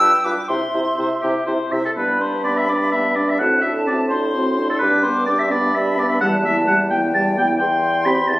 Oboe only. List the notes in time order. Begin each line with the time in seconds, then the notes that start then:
0.01 B4
0.25 B4
0.50 C5
0.74 C5
0.98 C5
1.22 G4
1.47 C5
1.72 E5
1.85 A4
1.97 B4
2.21 C5
2.44 D5
2.57 E5
2.69 D5
2.92 E5
3.15 D5
3.29 E5
3.39 F#5
3.62 E5
3.87 D5
4.09 C5
4.70 A4
4.79 B4
5.03 C5
5.26 D5
5.39 E5
5.51 D5
5.74 E5
5.99 D5
6.09 E5
6.21 F#5
6.45 E5
6.67 F#5
6.90 G5
7.15 A5
7.38 G5
7.59 G5
8.05 B5
8.28 A5